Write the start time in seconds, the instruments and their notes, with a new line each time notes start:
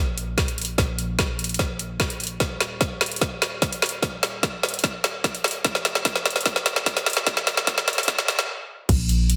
Already playing: 808-style bass A#1
0.18 closed hi-hat
0.38 kick, snare, closed hi-hat
0.48 closed hi-hat
0.58 closed hi-hat
0.62 closed hi-hat
0.65 closed hi-hat
0.78 808-style bass A#1, kick, snare, closed hi-hat
0.99 closed hi-hat
1.19 kick, snare, closed hi-hat
1.39 closed hi-hat
1.44 closed hi-hat
1.49 closed hi-hat
1.54 closed hi-hat
1.59 kick, snare, closed hi-hat
1.79 closed hi-hat
2.00 kick, snare, closed hi-hat
2.10 closed hi-hat
2.20 closed hi-hat
2.24 closed hi-hat
2.27 closed hi-hat
2.40 808-style bass D#1, kick, snare, closed hi-hat
2.60 snare, closed hi-hat
2.81 kick, snare, closed hi-hat
3.01 snare, closed hi-hat
3.06 closed hi-hat
3.12 closed hi-hat
3.16 closed hi-hat
3.21 kick, snare, closed hi-hat
3.42 snare, closed hi-hat
3.62 kick, snare, closed hi-hat
3.73 closed hi-hat
3.82 snare, closed hi-hat
3.86 closed hi-hat
3.89 closed hi-hat
4.02 808-style bass D#1, kick, snare, closed hi-hat
4.23 snare, closed hi-hat
4.43 kick, snare, closed hi-hat
4.63 snare, closed hi-hat
4.69 closed hi-hat
4.74 closed hi-hat
4.79 closed hi-hat
4.84 kick, snare, closed hi-hat
5.04 snare, closed hi-hat
5.24 kick, snare, closed hi-hat
5.35 closed hi-hat
5.44 snare, closed hi-hat
5.48 closed hi-hat
5.51 closed hi-hat
5.65 808-style bass F1, kick, snare, closed hi-hat
5.75 snare
5.85 snare, closed hi-hat
5.95 snare
6.05 kick, snare, closed hi-hat
6.16 snare
6.26 snare, closed hi-hat
6.30 closed hi-hat
6.36 snare, closed hi-hat
6.41 closed hi-hat
6.46 kick, snare, closed hi-hat
6.56 snare
6.66 snare, closed hi-hat
6.76 snare
6.86 kick, snare, closed hi-hat
6.97 snare, closed hi-hat
7.06 snare, closed hi-hat
7.10 closed hi-hat
7.13 snare, closed hi-hat
7.27 808-style bass F1, kick, snare, closed hi-hat
7.37 snare
7.47 snare, closed hi-hat
7.57 snare
7.67 kick, snare, closed hi-hat
7.78 snare
7.88 snare, closed hi-hat
7.93 closed hi-hat
7.98 snare, closed hi-hat
8.03 closed hi-hat
8.08 kick, snare, closed hi-hat
8.19 snare
8.28 snare, closed hi-hat
8.39 snare
8.89 808-style bass A#1, kick, closed hi-hat, crash
9.09 closed hi-hat
9.30 closed hi-hat